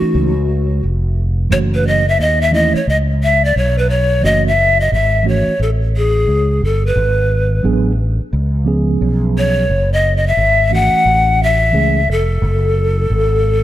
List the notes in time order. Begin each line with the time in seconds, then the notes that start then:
Already playing: E3 A3 C#4 D#4 F#4
0.14 C#2
0.83 F1
1.50 F#1 E3 A3 C#4 F#4 C#5
1.75 B4
1.87 D#5
2.09 E5
2.19 D#2 D#5
2.41 E5
2.51 E3 A3 C#4 E4 D#5
2.74 C#5, muted fretless electric bass stroke
2.87 C#2 D#5
3.23 E5
3.45 D5
3.56 B1 C#5
3.78 B4
3.90 C#5
4.22 F#1 E3 A3 C#4 F#4 D#5
4.47 E5
4.80 D#5
4.92 G#1 E5
5.23 E3 A3 C#4 F#4
5.28 C#5
5.59 A1 A4
5.97 G#4
6.27 C#2
6.61 G1 A4
6.86 B4
6.95 G#1
7.63 A1 F#3 B3 D4 G#4
8.20 muted fretless electric bass stroke
8.33 C#2
8.64 F3 B3 C#4 G#4
9.01 B1
9.38 C#5
9.69 F#1
9.93 D#5
10.17 D#5
10.27 E5
10.37 G#1
10.70 E3 A3 C#4 F#4
10.74 F#5
11.05 A1
11.43 E5
11.71 C#2 E3 A3 C#4 G#4
12.08 F1 A4
12.42 F#1
13.10 G#1